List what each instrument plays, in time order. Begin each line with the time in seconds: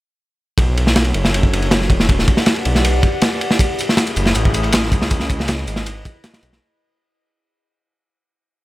0.58 detuned saw bass B1, kick, ride
0.77 ride
0.86 ambient pad D4 F#4 A4 C#5, snare
0.96 snare, ride
1.05 ride
1.14 detuned saw bass F#1, ride
1.25 snare
1.34 ride
1.43 kick
1.53 detuned saw bass F#1, ride
1.62 ride
1.71 snare, ride
1.81 snare
1.90 detuned saw bass E1, kick, ride
2.00 snare
2.09 kick, ride
2.19 snare
2.28 kick, ride
2.37 ambient pad G4 B4 D5 F#5, snare
2.46 snare, ride
2.56 ride
2.65 detuned saw bass B1, ride
2.75 snare
2.85 ride
3.03 kick, ride
3.21 snare, ride
3.41 ride
3.51 snare
3.59 kick, ride, tambourine
3.79 ride, tambourine
3.88 ambient pad A3 C#4 E4 G#4, snare
3.97 snare, ride, tambourine
4.07 closed hi-hat, ride
4.16 detuned saw bass F#1, ride, tambourine
4.26 snare
4.35 detuned saw bass A1, ride, tambourine
4.45 kick
4.54 ride, tambourine
4.63 snare, ride
4.73 snare, ride, tambourine
4.83 snare
4.92 detuned saw bass C#2, kick, ride, tambourine
5.02 snare
5.11 kick, ride, tambourine
5.20 snare
5.30 kick, ride, tambourine
5.39 ambient pad E4 G#4 B4 D#5, snare
5.48 snare, ride, tambourine
5.59 ride
5.67 detuned saw bass G#1, ride, tambourine
5.76 snare
5.86 ride, tambourine
6.05 kick, ride, tambourine
6.24 snare, ride, tambourine
6.34 snare, ride
6.43 detuned saw bass B1, ride, tambourine
6.53 snare